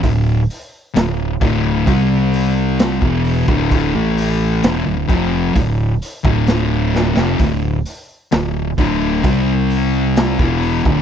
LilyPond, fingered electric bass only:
\new Staff \with { instrumentName = "Fingered electric bass" } { \clef bass \time 4/4 \key d \minor \tempo 4 = 65 d,,8 r8 d,,8 d,,8 c,4~ c,16 e,,8 d,,16~ | d,,16 a,,8. e,,16 d,,16 f,,8 d,,8 r16 d,,4 f,,16 | d,,8 r8 d,,8 d,,8 c,4~ c,16 e,,8 d,,16 | }